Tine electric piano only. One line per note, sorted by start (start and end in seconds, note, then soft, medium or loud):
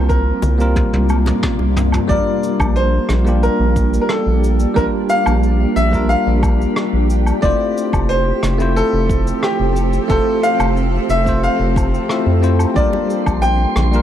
0.00 0.55 G3 medium
0.00 0.55 A#3 medium
0.00 0.56 C4 medium
0.00 0.56 F4 medium
0.00 0.57 A#4 medium
0.58 2.04 G3 medium
0.58 2.05 A#3 medium
0.58 2.05 C4 medium
0.58 2.06 F4 medium
0.62 2.06 A#4 medium
2.07 3.21 G3 medium
2.07 3.22 A#3 medium
2.07 3.22 D4 medium
2.07 3.23 F4 medium
2.07 3.23 A#4 medium
3.25 4.71 G3 medium
3.25 4.72 A#3 medium
3.25 4.72 D4 medium
3.25 4.73 F4 medium
3.29 4.73 G4 medium
4.74 5.88 G3 medium
4.74 5.89 A#3 medium
4.74 5.89 D4 medium
4.74 5.90 F4 medium
4.79 5.90 A#4 medium
5.91 7.38 G3 medium
5.91 7.39 A#3 medium
5.91 7.39 D4 medium
5.91 7.39 F4 medium
5.95 7.40 A#4 medium
7.41 8.55 A3 medium
7.41 8.55 C4 medium
7.41 8.56 E4 medium
7.41 8.56 F4 medium
7.45 8.57 C5 loud
8.58 10.05 A3 medium
8.58 10.05 C4 medium
8.58 10.06 E4 medium
8.58 10.06 F4 medium
8.58 10.07 C5 medium
10.08 11.22 A3 medium
10.08 11.22 C4 medium
10.08 11.23 F4 medium
10.08 11.23 C5 medium
11.25 12.05 A3 medium
11.25 12.06 C4 medium
11.25 12.07 F4 medium
11.29 12.07 C5 medium
12.09 12.38 A3 medium
12.09 12.39 C4 medium
12.09 12.39 E4 medium
12.09 12.39 F4 medium
12.09 12.39 E5 medium
12.42 12.72 A3 medium
12.42 12.72 C4 medium
12.42 12.72 E4 medium
12.42 12.73 F4 medium
12.42 12.73 C5 medium
12.74 13.88 G3 medium
12.74 13.89 A#3 medium
12.74 13.89 D4 medium
12.74 13.90 F4 medium
12.79 13.90 A#4 medium
13.92 14.02 G3 medium
13.92 14.02 A#3 medium
13.92 14.02 D4 medium
13.92 14.02 F4 medium
13.96 14.02 A#4 loud